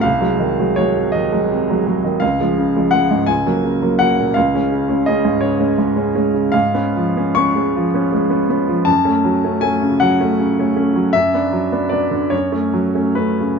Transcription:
<<
  \new Staff \with { instrumentName = "Grand piano" } { \time 6/8 \key des \major \tempo 4. = 53 f''4 des''8 ees''4. | f''4 ges''8 aes''4 ges''8 | f''4 ees''8 des''8 r4 | \key fis \minor eis''4 cis'''2 |
a''4 gis''8 fis''4. | e''4 d''8 cis''4 b'8 | }
  \new Staff \with { instrumentName = "Grand piano" } { \clef bass \time 6/8 \key des \major c,16 <ges aes>16 ees16 <ges aes>16 <ges aes>16 c16 ees16 <ges aes>16 c16 <ges aes>16 <ges aes>16 ees16 | des,16 <f aes>16 des16 <f aes>16 <f aes>16 aes,16 des,16 <ges bes>16 des16 <ges bes>16 <ges bes>16 bes,16 | des,16 <aes des'>16 des16 <aes des'>16 <aes des'>16 aes,16 des16 <aes des'>16 aes,16 <aes des'>16 <aes des'>16 des16 | \key fis \minor gis,16 <b cis'>16 eis16 <b cis'>16 <b cis'>16 gis16 eis16 <b cis'>16 gis16 <b cis'>16 <b cis'>16 eis16 |
fis,16 <a cis'>16 fis16 <a cis'>16 <a cis'>16 cis16 fis16 <a cis'>16 cis16 <a cis'>16 <a cis'>16 fis16 | fis,16 <b d'>16 fis16 <b d'>16 <b d'>16 d16 fis,16 <a cis'>16 fis16 <a cis'>16 <a cis'>16 cis16 | }
>>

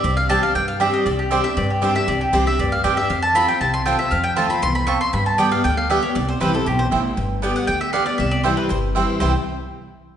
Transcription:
<<
  \new Staff \with { instrumentName = "Mandolin" } { \time 4/4 \key c \major \tempo 4 = 236 d''8 f''8 a''8 f''8 g''8 f''8 e''8 ees''8 | d''8 g'8 c''8 e''8 d''8 g'8 c''8 e''8 | d''8 g'8 c''8 e''8 d''8 f''8 g''8 e''8 | f''8 a''8 b''8 g''8 a''8 c'''8 g''8 e''8 |
f''8 g''8 a''8 b''8 c'''8 b''8 des'''8 c'''8 | b''8 a''8 g''8 f''8 g''8 f''8 e''8 des''8 | d''8 c''8 b'8 a'8 g'8 c''8 r4 | r4. fis''8 g''8 e''8 f''8 d''8 |
e''8 d''8 c''8 b'8 c''8 r4. | c''8 r2. r8 | }
  \new Staff \with { instrumentName = "Mandolin" } { \time 4/4 \key c \major r4 <c' g' d'' g''>8 r4. <c' g' d'' g''>8 r8 | r4 <c' g' d'' g''>8 r4. <c' g' d'' g''>8 r8 | r4 <c' g' d'' g''>8 r4. <c' g' d'' g''>8 r8 | r4 <c' f' c'' a''>8 r4. <c' f' c'' a''>8 r8 |
r4 <c' f' c'' a''>8 r4. <c' f' c'' a''>8 r8 | r4 <b g' d'' g''>8 r4. <b g' d'' g''>8 r8 | r4 <c' e' c'' g''>8 r4. <c' e' c'' g''>8 r8 | r4 <b g' d'' g''>8 r4. <b g' d'' g''>8 r8 |
r4 <c' e' c'' g''>8 r4. <c' e' c'' g''>8 r8 | <c' e' c'' g''>8 r2. r8 | }
  \new Staff \with { instrumentName = "Steel-string acoustic guitar" } { \time 4/4 \key c \major << { r4 <g c' d' g'>8 <d' g'>8 r4 <g c' d' g'>4 | r4 <g c' d' g'>8 <d' g'>8 r4 <g c' d' g'>8 <d' g'>8 | r4 <g c' d' g'>8 <d' g'>8 r4 <g c' d' g'>8 <d' g'>8 | r4 <f a c' f'>8 <c' f'>8 r4 <f a c' f'>8 <c' f'>8 |
r4 <f a c' f'>8 <c' f'>8 r2 | r4 <d g b g'>8 <b g'>8 r4 <d g b g'>8 <b g'>8 | r4 <e g c' e'>8 <c' e'>8 r2 | r4 <d g b g'>4 r4 <d g b g'>8 <b g'>8 |
r4 <e g c' e'>4 r4 <e g c' e'>4 | <c e g c' e'>8 r2. r8 | } \\ { c2 g,2 | c2 g,2 | c2 g,2 | f,2 c2 |
f,2 e,4 f,4 | g,2 d2 | c2 b,4 a,4 | g,2 d2 |
c2 g,2 | r1 | } >> }
  \new Staff \with { instrumentName = "Upright bass" } { \clef bass \time 4/4 \key c \major c,2 g,2 | c,2 g,2 | c,4 c,4 d,4 e,4 | f,2 c,2 |
f,2 c,2 | g,2 d,2 | c,4 c,4 b,,4 a,,4 | g,,2 d,2 |
c,2 g,,2 | c,8 r2. r8 | }
>>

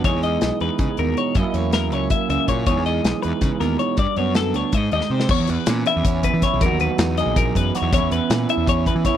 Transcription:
<<
  \new Staff \with { instrumentName = "Clean electric guitar" } { \time 7/8 \key e \lydian \tempo 4 = 160 cis''8 dis''4 b'4 ais'8 cis''8 | dis''8 cis''8 ais'8 cis''8 e''8 e''8 cis''8 | cis''8 dis''4 b'4 ais'8 cis''8 | d''8 cis''8 a'8 cis''8 dis''8 dis''8 bis'8 |
cis''8 b'4 e''8 cis''8 b'8 cis''8 | ais'8 b'4 dis''8 ais'8 b'8 cis''8 | cis''8 b'4 e''8 cis''8 b'8 cis''8 | }
  \new Staff \with { instrumentName = "Clean electric guitar" } { \time 7/8 \key e \lydian << { <e gis dis' gis'>8 gis4 dis'8 gis4 dis'8 | <fis ais cis' e'>8 ais4 cis'8 ais4 cis'8 | <e gis dis' gis'>8 gis4 dis'8 gis4 dis'8 | r8 b4 d'8 r8 dis'4 |
r4 cis'8 e'8 cis'4 e'8 | <fis dis' fis'>4 dis'8 gis'8 dis'4 fis'8 | <e b cis' e'>4 cis'8 e'8 cis'4 e'8 | } \\ { e,4 e4. b,4 | fis,4 fis4. cis4 | e,4 e4. b,4 | g,4 d4 gis,4 bis8 |
e,4. e4 e,4 | e,4. fis4 e,4 | e,4. e4 e,4 | } >> }
  \new Staff \with { instrumentName = "Picked electric bass" } { \clef bass \time 7/8 \key e \lydian e,16 e,8. b,,16 r16 e,16 r16 cis16 r16 dis,8 r8 | fis,16 r16 e,4 cis,8 r8 cis,16 r16 ais,8 | e,16 e,8. b,,16 r16 e,16 r16 cis16 r16 dis,8 r8 | g,16 r16 fis,4 d,16 r16 gis,8 dis,16 r16 bis,8 |
e,16 e,16 e,16 r16 ais,8 r16 e,16 e,8. e16 r16 b,,16 | e,16 dis,16 dis,16 r16 e,8. ais,,16 ais,,8 fis,8 r16 e,16 | e,16 e,16 e,16 r16 ais,8 r16 e,16 e,8. e16 r8 | }
  \new DrumStaff \with { instrumentName = "Drums" } \drummode { \time 7/8 <hh bd>8 hh8 <hh sn>8 hh8 <hh bd>8 hh8 hh8 | <hh bd>8 hh8 <hh sn>8 hh8 <hh bd>8 hh8 <hh bd>8 | <hh bd>8 hh8 <hh sn>8 hh8 <hh bd sn>8 <hh sn>8 hh8 | <hh bd>8 hh8 <hh sn>8 hh8 <hh bd>8 hh16 sn8 sn16 |
<cymc bd>8 <hh sn>8 <hh sn>8 <hh sn>8 <hh bd>8 <hh bd>8 <hh bd sn>8 | <hh bd>8 hh8 <hh sn>8 <hh sn>8 <hh bd>8 <hh bd>8 <hh sn>8 | <hh bd>8 hh8 <hh sn>8 hh8 <hh bd>8 <hh bd>8 <hh bd sn>8 | }
>>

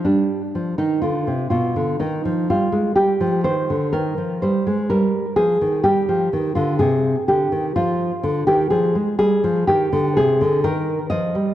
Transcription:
\new Staff \with { instrumentName = "Nylon-string guitar" } { \clef bass \time 4/4 \key ees \major \tempo 4 = 62 << { d'8. ees'16 f'8 f'8 ees'8 f'8 g'8 c''8 | bes'8 c''8 bes'8 aes'8 g'8. f'16 aes'8 g'8 | f'8. g'16 aes'8 aes'8 g'8 aes'8 bes'8 ees''8 | } \\ { g8 f16 ees16 d16 c16 b,16 d16 ees16 f16 g16 aes16 g16 f16 ees16 d16 | ees16 f16 g16 aes16 g8 f16 ees16 g16 f16 ees16 d16 c8 d16 ees16 | f8 d16 ees16 f16 aes16 g16 f16 ees16 d16 c16 d16 ees8 f16 g16 | } >> }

